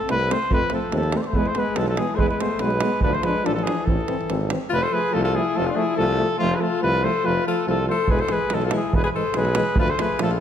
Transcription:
0.07 C2 A3 C4 B4, davul high
0.20 davul high
0.29 A3 C4 C5, davul high
0.50 F2 F3 A3 C4 B4, davul low
0.70 F3 A3 C4, davul high
0.74 A4
0.92 D#2 F3 A3 C4, davul high
0.97 A4
1.03 davul high
1.12 A3 C4, davul high
1.17 C5
1.22 B3 D5, davul high
1.26 A3 C5
1.33 E2 G#3 B3 B4, davul low
1.38 G#3
1.46 C5, davul high
1.51 A3
1.55 G#3 B3 B4, davul high
1.60 G#3
1.75 B1 B3 A4, davul high
1.79 E3 G#3
1.88 F3 A4, davul high
1.97 E3 G#3 B3 G#4, davul high
2.15 G#3 A3 B4 C5, davul low
2.19 E2 B3
2.29 G#3 B4, davul high
2.40 G#3 A3 B3 C5, davul high
2.59 B1 G#3 B3 B4, davul high
2.63 G#3
2.70 davul high
2.81 G#3 B3, davul high
3.01 D2 F3 D4 B4, davul low
3.13 A3 C5, davul high
3.22 F3 G#3 B4, davul high
3.26 D4
3.43 A1 F3 D4 A4, davul high
3.55 F3 A4, davul high
3.63 E3 F3 D4 G#4, davul high
3.85 A1 E3 C4 A4, davul low
4.01 davul high
4.07 E3 C4, davul high
4.21 davul high
4.27 G#1 E3 C4, davul high
4.49 E3 C4, davul high
4.70 F1 F3 A3 F4 B4
4.82 A4 C5
4.91 F3 A3 G#4 B4
5.11 C2 F3 A3 F4 A4
5.23 F4 A4
5.33 F3 A3 E4 G#4
5.55 F1 F3 A3 F4 A4
5.67 F4
5.71 F3 D4
5.75 A3 G#4
5.80 E4
5.95 C2 F3 A3 A4
6.00 F4
6.18 F3 A3
6.38 F1 F3 A3 F4
6.43 C4
6.55 F3 G#4 B4
6.60 A3 F4 A4
6.81 C2 F3 A3 F4 B4
7.02 F3 A3 A4 C5
7.23 F1 F3 A3 F4 B4
7.46 F3 A3 F4 A4
7.66 C2 F3 A3 F4 A4
7.86 F3 A3 C5
7.91 A4
8.08 E1 E3 G#3 G#4 B4, davul low
8.19 A4 C5, davul high
8.29 E3 G#3 G#4 B4, davul high
8.50 B1 E3 G#3 E4 A4, davul high
8.62 F4 A4, davul high
8.71 E3 G#3 E4, davul high
8.77 G#4
8.92 E1 E3 G#3 B4, davul low
8.96 G#4
9.04 G#4 B4, davul high
9.13 E3 G#3 A4 C5
9.34 B1 E3 G#3 G#4 B4, davul high
9.45 davul high
9.55 E3 G#3, davul high
9.76 D2 F3 A3 F4 B4, davul low
9.88 A4 C5, davul high
9.98 F3 A3 G#4 B4, davul high
10.19 A#1 F3 A3 F4 A4, davul high
10.30 F4 A4, davul high

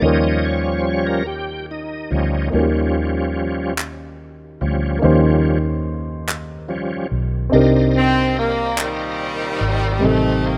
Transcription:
0.00 D#2 D#3 F3 G3 A#3 C#4 D#4 G4 D#5
0.05 A#4
0.45 C#5
0.80 C5
0.85 C#5
1.07 A#4
1.27 G4
1.71 D#4
2.10 D2 F3 G3 C#4
2.50 D#2 D#3 F3 G3 A#3 C#4 D#4
2.54 F#4 A#4
2.60 G4
3.78 clap
4.61 D2 F3 G3 C#4
4.99 D#3 F3 G3 A#3 C#4 D#4
5.03 D#2 C#4 G4 C5
6.29 clap
6.69 F3 G3 C#4
7.12 B1
7.50 C2 C3 C4 D4 D#4 C5 D5 D#5 A#5
7.54 G4 A#4
7.97 C4
8.39 A#3
8.78 A#2 D#3 G3, clap
9.61 G#1
9.99 A1 C3 G3 C4 D#4
10.03 C3 D#3 A3 G4 A4 G5 A5
10.45 A#3

